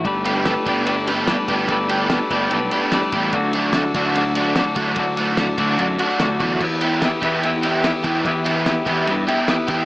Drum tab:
CC |----------------|----------------|----------------|----------------|
RD |x-x-x-x-x-x-x-x-|x-x-x-x-x-x-x-x-|x-x-x-x-x-x-x-x-|x-x-x-x-x-x-x-x-|
SD |----o-----o-o---|----o-------oo--|----o-------o---|----o-------o---|
BD |o-----o-------o-|o-----o-------o-|o-----o-------o-|o-----o-------o-|

CC |x---------------|----------------|
RD |--x-x-x-x-x-x-x-|x-x-x-x-x-x-x-x-|
SD |----o-------o---|----o-------o---|
BD |o-----o-------o-|o-----o-------o-|